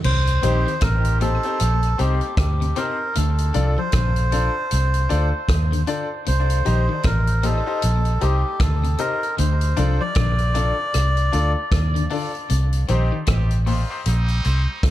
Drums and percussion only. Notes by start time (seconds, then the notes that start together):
0.04 crash
0.27 closed hi-hat
0.43 closed hi-hat
0.68 closed hi-hat
0.81 kick, cross-stick, closed hi-hat
1.05 closed hi-hat
1.21 closed hi-hat
1.43 closed hi-hat
1.60 closed hi-hat
1.83 closed hi-hat
1.99 closed hi-hat
2.21 closed hi-hat
2.37 kick, cross-stick, closed hi-hat
2.62 closed hi-hat
2.76 closed hi-hat
3.15 closed hi-hat
3.38 closed hi-hat
3.54 closed hi-hat
3.92 kick, cross-stick, closed hi-hat
4.16 closed hi-hat
4.32 closed hi-hat
4.71 closed hi-hat
4.94 closed hi-hat
5.10 closed hi-hat
5.49 kick, cross-stick, closed hi-hat
5.73 closed hi-hat
5.87 closed hi-hat
6.26 closed hi-hat
6.50 closed hi-hat
6.66 closed hi-hat
7.03 kick, cross-stick, closed hi-hat
7.27 closed hi-hat
7.43 closed hi-hat
7.82 closed hi-hat
8.05 closed hi-hat
8.21 closed hi-hat
8.60 kick, cross-stick, closed hi-hat
8.84 closed hi-hat
8.98 closed hi-hat
9.23 closed hi-hat
9.38 closed hi-hat
9.61 closed hi-hat
9.77 closed hi-hat
10.15 kick, cross-stick, closed hi-hat
10.39 closed hi-hat
10.55 closed hi-hat
10.94 cross-stick, closed hi-hat
11.17 closed hi-hat
11.33 closed hi-hat
11.72 kick, cross-stick, closed hi-hat
11.96 closed hi-hat
12.10 open hi-hat
12.35 closed hi-hat
12.50 closed hi-hat
12.73 closed hi-hat
12.88 closed hi-hat
13.27 kick, cross-stick, closed hi-hat
13.51 closed hi-hat
13.67 open hi-hat
14.06 closed hi-hat
14.28 closed hi-hat
14.45 closed hi-hat
14.83 kick, cross-stick, closed hi-hat